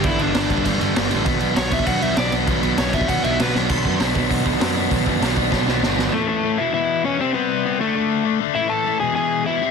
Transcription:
<<
  \new Staff \with { instrumentName = "Overdriven electric guitar" } { \time 4/4 \key b \minor \tempo 4 = 197 e'8 d'8 d'4 r2 | r4 cis''8 e''8 fis''8 e''8 d''8 r8 | r4 cis''8 e''8 fis''8 e''8 b'8 r8 | r1 |
r1 | \key e \mixolydian <a a'>8 <a a'>4 <e' e''>8 <e' e''>4 <cis' cis''>8 <c' c''>8 | <b b'>4. <a a'>2 r8 | <e' e''>8 <a' a''>4 <gis' gis''>8 <gis' gis''>4 <e' e''>4 | }
  \new Staff \with { instrumentName = "Overdriven electric guitar" } { \clef bass \time 4/4 \key b \minor <g, d g b d'>8 <g, d g b d'>8 <g, d g b d'>8 <g, d g b d'>8 <g, d g b d'>8 <g, d g b d'>8 <g, d g b d'>8 <g, d g b d'>8 | <b, fis b d'>8 <b, fis b d'>8 <b, fis b d'>8 <b, fis b d'>8 <b, fis b d'>8 <b, fis b d'>8 <b, fis b d'>8 <b, fis b d'>8 | <b, fis b d'>8 <b, fis b d'>8 <b, fis b d'>8 <b, fis b d'>8 <b, fis b d'>8 <b, fis b d'>8 <b, fis b d'>8 <b, fis b d'>8 | <b, fis b d'>8 <b, fis b d'>8 <b, fis b d'>8 <b, fis b d'>8 <b, fis b d'>8 <b, fis b d'>8 <b, fis b d'>8 <b, fis b d'>8 |
<b, fis b d'>8 <b, fis b d'>8 <b, fis b d'>8 <b, fis b d'>8 <b, fis b d'>8 <b, fis b d'>8 <b, fis b d'>8 <b, fis b d'>8 | \key e \mixolydian r1 | r1 | r1 | }
  \new Staff \with { instrumentName = "Distorted electric guitar" } { \clef bass \time 4/4 \key b \minor <g, d g>8 <g, d g>8 <g, d g>8 <g, d g>8 <g, d g>8 <g, d g>8 <g, d g>8 <g, d g>8 | <b, fis b>8 <b, fis b>8 <b, fis b>8 <b, fis b>8 <b, fis b>8 <b, fis b>8 <b, fis b>8 <b, fis b>8 | <b, fis b>8 <b, fis b>8 <b, fis b>8 <b, fis b>8 <b, fis b>8 <b, fis b>8 <b, fis b>8 <b, fis b>8 | <b, fis b>8 <b, fis b>8 <b, fis b>8 <b, fis b>8 <b, fis b>8 <b, fis b>8 <b, fis b>8 <b, fis b>8 |
<b, fis b>8 <b, fis b>8 <b, fis b>8 <b, fis b>8 <b, fis b>8 <b, fis b>8 <b, fis b>8 <b, fis b>8 | \key e \mixolydian <a, e a>4 <a, e a>8 <e, b, e>8 <e, b, e>4 <e, b, e>8 <c g c'>8 | <c g c'>4 <c g c'>8 <d a d'>8 <d a d'>4 <d a d'>8 <d a d'>8 | <a, e a>4 <a, e a>8 <e, b, e>8 <e, b, e>4 <e, b, e>8 <c g c'>8 | }
  \new Staff \with { instrumentName = "Picked electric bass" } { \clef bass \time 4/4 \key b \minor g,,8 g,,8 g,,4 g,,8 g,,8 g,,8 a,,8 | b,,8 b,,8 b,,4 b,,8 b,,8 b,,8 b,,8 | b,,8 b,,8 b,,4 b,,8 b,,8 b,,8 b,,8 | b,,8 fis,8 b,,8 b,,8 b,,8 b,,8 fis,4 |
b,,8 fis,8 b,,8 b,,8 b,,8 b,,8 g,,4 | \key e \mixolydian r1 | r1 | r1 | }
  \new DrumStaff \with { instrumentName = "Drums" } \drummode { \time 4/4 <cymc bd>8 cymc8 <cymc sn>8 <cymc bd>16 bd16 <cymc bd>8 cymc8 <cymc sn>8 cymc8 | <cymc bd>8 cymc8 <cymc sn>8 <cymc bd>16 bd16 <cymc bd>8 cymc8 <cymc sn>8 cymc8 | <cymc bd>8 cymc8 <cymc sn>8 <cymc bd>16 bd16 <cymc bd>8 cymc8 <cymc sn>8 sn8 | <cymc bd>8 bd8 <hho sn>8 bd8 <hho bd>8 bd8 <hho sn>4 |
<hho bd>8 bd8 <hho sn>8 bd8 <bd sn>8 sn8 sn8 sn8 | r4 r4 r4 r4 | r4 r4 r4 r4 | r4 r4 r4 r4 | }
>>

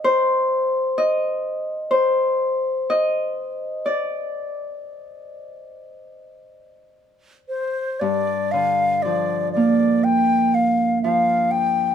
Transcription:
<<
  \new Staff \with { instrumentName = "Flute" } { \time 4/4 \key ees \lydian \tempo 4 = 61 r1 | r2. r8 c''8 | \key g \minor d''8 f''8 d''8 d''8 g''8 f''8 f''8 g''8 | }
  \new Staff \with { instrumentName = "Harp" } { \time 4/4 \key ees \lydian c''4 ees''4 c''4 ees''4 | d''2. r4 | \key g \minor g,8 d8 f8 bes4. f4 | }
>>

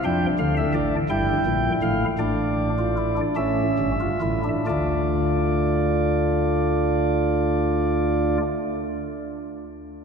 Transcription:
<<
  \new Staff \with { instrumentName = "Pipe organ" } { \time 6/8 \key d \minor \tempo 4. = 44 << { g''8 f''16 e''16 d''8 g''4 f''8 | d''4. e''4. | <a d' d''>2.~ | <a d' d''>2. | } \\ { d'4. e'4. | d'8. f'16 e'16 d'16 cis'8. f'16 e'16 d'16 | f'2.~ | f'2. | } >> }
  \new Staff \with { instrumentName = "Pipe organ" } { \clef bass \time 6/8 \key d \minor <f, f>8 <d, d>8 <a,, a,>8 <g,, g,>8 <bes,, bes,>8 <a,, a,>8 | <a,, a,>4. <a,, a,>8 <g,, g,>8 <a,, a,>8 | <d, d>2.~ | <d, d>2. | }
>>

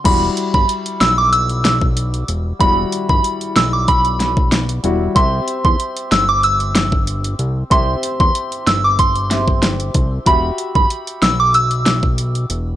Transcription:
<<
  \new Staff \with { instrumentName = "Synth bell" } { \time 4/4 \key e \minor \tempo 4 = 94 b''16 r8 b''16 r8 e'''16 d'''16 e'''8. r4 r16 | b''16 r8 b''16 r8 e'''16 d'''16 b''8. r4 r16 | c'''16 r8 c'''16 r8 e'''16 d'''16 e'''8. r4 r16 | c'''16 r8 c'''16 r8 e'''16 d'''16 c'''8. r4 r16 |
b''16 r8 b''16 r8 e'''16 d'''16 e'''8. r4 r16 | }
  \new Staff \with { instrumentName = "Grand piano" } { \time 4/4 \key e \minor <g e' fis'>1 | <g e' fis'>2.~ <g e' fis'>8 <g e' fis'>8 | <c' g' e''>1 | <c' g' e''>2~ <c' g' e''>8 <c' g' e''>4. |
<fis' g' e''>1 | }
  \new Staff \with { instrumentName = "Analog synth bass" } { \clef bass \time 4/4 \key e \minor e,,8 r16 g,,16 r8 b,,2 e,,8 | e,,8 r16 g,,16 r8 b,,2 e,,8 | c,8 r16 e,16 r8 g,,2 c,8 | c,8 r16 e,16 r8 g,,2 c,8 |
e,,8 r16 g,,16 r8 b,,2 e,,8 | }
  \new DrumStaff \with { instrumentName = "Drums" } \drummode { \time 4/4 <cymc hh bd>8 hh16 bd16 hh16 hh16 <hh sn>8 hh16 hh16 <hh sn>16 bd16 hh16 hh16 hh8 | <hh bd>8 hh16 bd16 hh16 hh16 <hh sn>8 <hh bd>16 hh16 <hh sn>16 bd16 <hh sn>16 hh16 hh8 | <hh bd>8 hh16 bd16 hh16 hh16 <hh sn>8 hh16 hh16 <hh sn>16 bd16 hh16 hh16 hh8 | <hh bd>8 hh16 bd16 hh16 hh16 <hh sn>8 <hh bd>16 hh16 <hh sn>16 bd16 <hh sn>16 hh16 <hh bd>8 |
<hh bd>8 hh16 bd16 hh16 hh16 <hh sn>8 hh16 hh16 <hh sn>16 bd16 hh16 hh16 hh8 | }
>>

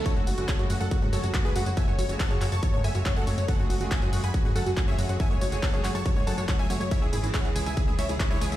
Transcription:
<<
  \new Staff \with { instrumentName = "Supersaw synth" } { \time 4/4 \key fis \minor \tempo 4 = 140 <a' cis''>16 fis'16 fis'16 fis'16 <a' cis''>16 fis'16 fis'16 <a' fis''>16 fis'16 fis'16 <a' cis''>16 fis'16 fis'16 <gis' b'>16 fis'16 fis'16 | <e'' gis''>16 cis''16 cis''16 cis''16 <fis'' a''>16 cis''16 cis''16 <a'' cis'''>16 cis''16 cis''16 <e'' gis''>16 cis''16 cis''16 <a' fis''>16 cis''16 cis''16 | <a' fis''>16 fis'16 fis'16 fis'16 <e'' gis''>16 fis'16 fis'16 <gis'' b''>16 fis'16 fis'16 <a' fis''>16 fis'16 fis'16 <cis'' e''>16 fis'16 fis'16 | <e'' gis''>16 cis''16 cis''16 cis''16 <fis'' a''>16 cis''16 cis''16 <a'' cis'''>16 cis''16 cis''16 <fis'' a''>16 cis''16 cis''16 <e'' gis''>16 cis''16 cis''16 |
<cis'' e''>16 gis'16 gis'16 gis'16 <cis'' fis''>16 gis'16 gis'16 <e'' gis''>16 gis'16 gis'16 <cis'' e''>16 gis'16 gis'16 <e' cis''>16 gis'16 gis'16 | }
  \new Staff \with { instrumentName = "Synth arpeggio sound" } { \time 4/4 \key fis \minor fis'16 cis''16 fis'16 fis'16 gis'16 cis''16 fis''16 fis''16 gis'16 cis''16 fis'16 fis'16 gis''16 gis'16 fis''16 cis''16 | a''16 cis''16 fis'16 fis'16 cis''16 gis'16 fis''16 cis''16 fis'16 cis''16 a'16 fis'16 fis''16 gis''16 fis''16 cis''16 | fis'16 cis''16 fis'16 fis'16 gis'16 cis''16 fis''16 fis''16 gis'16 cis''16 fis'16 fis'16 gis''16 gis'16 fis''16 cis''16 | a''16 cis''16 fis'16 fis'16 cis''16 gis'16 fis''16 cis''16 fis'16 cis''16 a'16 fis'16 fis''16 gis''16 fis''16 cis''16 |
e'16 e''16 e'16 e'16 gis'16 e''16 gis''16 gis''16 gis'16 e''16 e'16 e'16 cis'''16 gis'16 gis''16 e''16 | }
  \new Staff \with { instrumentName = "String section" } { \clef bass \time 4/4 \key fis \minor <cis gis a fis'>8 r16 <cis gis a fis'>8 <cis gis a fis'>8 r8 <cis gis a fis'>16 <cis gis a fis'>8 r16 <cis gis a fis'>16 <cis gis a fis'>8 | <cis gis a fis'>8 r16 <cis gis a fis'>8 <cis gis a fis'>8 r8 <cis gis a fis'>16 <cis gis a fis'>8 r16 <cis gis a fis'>16 <cis gis a fis'>8 | <cis gis a gis'>8 r16 <cis gis a gis'>8 <cis gis a gis'>8 r8 <cis gis a gis'>16 <cis gis a gis'>8 r16 <cis gis a gis'>16 <cis gis a gis'>8 | <cis gis a gis'>8 r16 <cis gis a gis'>8 <cis gis a gis'>8 r8 <cis gis a gis'>16 <cis gis a gis'>8 r16 <cis gis a gis'>16 <cis gis a gis'>8 |
<cis e gis e'>8 r16 <cis e gis e'>8 <cis e gis e'>8 r8 <cis e gis e'>16 <cis e gis e'>8 r16 <cis e gis e'>16 <cis e gis e'>8 | }
  \new Staff \with { instrumentName = "Analog synth bass" } { \clef bass \time 4/4 \key fis \minor r16 fis,16 fis,,16 fis,,16 r16 fis,16 fis,16 fis,16 r16 gis,16 fis,16 fis,16 r16 fis,16 fis,16 fis,16 | r16 fis,16 fis,,16 fis,,16 r16 fis,16 fis,16 fis,16 r16 gis,16 fis,16 fis,16 r16 fis,16 fis,16 fis,16 | r16 fis,16 fis,,16 fis,,16 r16 fis,16 fis,16 fis,16 r16 gis,16 fis,16 fis,16 r16 fis,16 fis,16 fis,16 | r16 fis,16 fis,,16 fis,,16 r16 fis,16 fis,16 fis,16 r16 gis,16 fis,16 fis,16 r16 fis,16 fis,16 fis,16 |
r16 cis,16 gis,,16 gis,,16 r16 cis,16 cis,16 cis,16 r16 d,16 cis,16 cis,16 r16 cis,16 cis,16 cis,16 | }
  \new DrumStaff \with { instrumentName = "Drums" } \drummode { \time 4/4 <hh bd tamb>8 <hho tamb>16 <hh tamb>16 <hc hh bd tamb>16 hh16 <hho tamb>16 <hh tamb>16 <hh bd tamb>8 <hho tamb>16 <hh tamb>16 <hc hh bd>8 <hho tamb>16 <hh tamb>16 | <hh bd tamb>8 <hho tamb>16 <hh tamb>16 <hc hh bd tamb>16 hh16 <hc hho tamb>16 <hh tamb>16 <hh bd tamb>8 <hho tamb>16 <hh tamb>16 <hc hh bd tamb>8 <hho tamb>16 <hh tamb>16 | <hh bd tamb>8 <hho tamb>16 <hh tamb>16 <hc hh bd tamb>16 hh16 <hho tamb>16 <hh tamb>16 <hh bd tamb>8 <hho tamb>16 <hh tamb>16 <hc hh bd tamb>8 <hho tamb>16 <hh tamb>16 | <hh bd tamb>8 <hho tamb>16 <hh tamb>16 <hc hh bd tamb>16 hh16 <hc hho tamb>16 <hh tamb>16 <hh bd tamb>8 <hho tamb>16 <hh tamb>16 <hc hh bd tamb>8 <hho tamb>16 <hh tamb>16 |
<hh bd cymr tamb>8 <hho cymr tamb>16 <hh tamb>16 <hc hh bd cymr tamb>16 hh16 <hho cymr tamb>16 <hh tamb>16 <hh bd cymr tamb>8 <hho cymr tamb>16 <hh tamb>16 <hc hh bd cymr tamb>8 <hho cymr tamb>16 <hh tamb>16 | }
>>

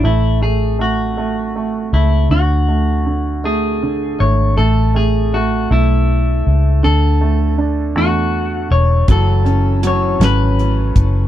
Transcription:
<<
  \new Staff \with { instrumentName = "Clean electric guitar" } { \time 6/8 \key a \major \tempo 4. = 53 e'8 gis'8 fis'4. e'8 | fis'4. gis'4 cis''8 | a'8 gis'8 fis'8 e'4. | a'4. fis'4 cis''8 |
a'4 cis''8 b'4. | }
  \new Staff \with { instrumentName = "Steel-string acoustic guitar" } { \time 6/8 \key a \major r2. | r2. | r2. | r2. |
<fis, cis e a cis' a'>8 <e a cis' a'>8 <e a cis' a'>8 <fis, cis e a cis' a'>8 <e a cis' a'>8 <e a cis' a'>8 | }
  \new Staff \with { instrumentName = "Upright piano" } { \time 6/8 \key a \major a8 a8 a8 a8 a8 a8 | d8 a8 d8 a8 d8 a8 | a8 a8 a8 a4. | d8 a8 d'8 a4. |
fis8 cis'8 fis8 cis'4. | }
  \new Staff \with { instrumentName = "Fingered electric bass" } { \clef bass \time 6/8 \key a \major a,,2~ a,,8 cis,8 | d,2~ d,8 gis,,8 | a,,4. b,,4 cis,8 | d,4. e,4 e,,8 |
fis,,4. gis,,4 fis,,8 | }
  \new DrumStaff \with { instrumentName = "Drums" } \drummode { \time 6/8 r4. r4. | r4. r4. | r4. r4. | r4. r4. |
<hh bd>8 hh8 hh8 <hh sn>8 hh8 <hh bd>8 | }
>>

